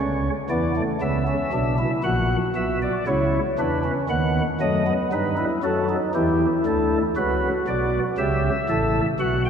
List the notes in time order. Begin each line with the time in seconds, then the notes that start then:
0.00 C#2 C#3 C#4 C#5
0.50 E2 E3 B3 D5
0.76 A3
1.01 C#2 C#3 B3 E5
1.28 C#4
1.52 B1 B2 D4
1.79 E4
2.04 A#1 A#2 F#4 F#5
2.56 B1 B2 E5
2.82 D5
3.07 C#2 C#3 E4 C#5
3.59 E2 E3 D4 B4
3.84 C#4
4.09 D#2 D#3 B3 F#5
4.61 F#2 F#3 A3 D#5
4.87 B3
5.12 G2 G3 D#4 B4
5.37 E4
5.63 F#2 F#3 F#4 A4
5.89 D#4
6.14 E2 E3 E4 G4
6.66 D2 D3 A4
7.17 C#2 C#3 F#4 B4
7.68 B1 B2 D5
8.18 C#2 C#3 G4 E5
8.69 A1 A2 A4
9.19 B1 B2 F#4 F#5
9.45 G5